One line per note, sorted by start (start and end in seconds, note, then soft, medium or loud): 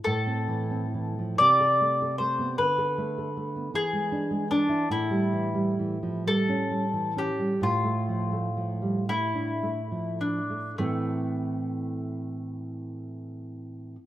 0.04 1.36 A2 soft
0.04 1.35 A4 medium
0.27 0.62 C4 soft
0.48 0.85 E3 soft
0.71 1.08 C4 soft
0.94 1.18 E3 soft
1.19 1.39 F3 soft
1.38 2.55 C3 soft
1.38 2.15 D5 medium
1.60 1.92 A4 soft
1.81 2.12 A3 soft
2.02 2.32 A4 soft
2.18 2.51 A3 soft
2.18 2.55 C5 soft
2.39 2.58 B3 soft
2.58 3.71 D3 soft
2.58 3.70 B4 soft
2.78 3.09 A4 soft
2.98 3.29 A3 soft
3.18 3.48 A4 soft
3.37 3.67 A3 soft
3.56 3.74 B3 soft
3.74 4.87 E3 soft
3.74 4.47 G#4 medium
3.93 4.24 G#3 soft
4.12 4.43 D4 soft
4.31 4.62 G#3 soft
4.51 4.88 D4 medium
4.51 4.83 D4 soft
4.69 4.90 E4 soft
4.90 7.58 A2 soft
4.90 6.23 E4 soft
5.10 5.47 G3 soft
5.33 5.70 E3 soft
5.54 5.93 G3 soft
5.79 6.02 E3 soft
6.03 6.26 F3 soft
6.27 6.63 G3 soft
6.27 7.13 A4 medium
6.49 6.85 C#4 soft
6.71 7.07 G3 soft
6.93 7.30 E3 soft
7.16 7.53 C#4 soft
7.16 7.60 G4 soft
7.39 7.62 G3 soft
7.62 10.76 A2 soft
7.62 9.05 F4 soft
7.84 8.22 A3 soft
8.09 8.47 F3 soft
8.32 8.72 A3 soft
8.57 8.98 F3 soft
8.82 9.08 G3 soft
9.09 9.52 A3 soft
9.09 10.18 E4 medium
9.35 9.79 D4 soft
9.63 10.09 A3 soft
9.92 10.40 F3 soft
10.21 10.68 D4 soft
10.21 10.76 D4 soft
10.50 10.79 A3 soft
10.78 13.96 A2 soft
10.78 13.96 E3 soft
10.78 13.95 A3 soft
10.78 13.96 C4 soft
10.78 13.97 E4 soft
10.78 13.97 A4 soft
10.78 13.97 C5 soft